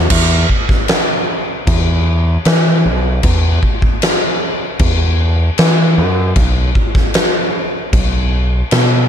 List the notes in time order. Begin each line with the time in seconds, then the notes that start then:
0.10 E2, kick, crash
0.49 kick
0.69 kick, snare
0.88 snare, crash
1.67 E2, kick, crash
2.45 E3, snare, crash
2.85 B1
3.23 E2, kick, crash
3.63 kick
3.82 kick
4.02 snare, crash
4.79 E2, kick, crash
5.58 E3, snare, crash
5.98 F#2
6.36 B1, kick, crash
6.75 kick
6.95 kick, snare
7.14 snare, crash
7.93 B1, kick, crash
8.71 B2, snare, crash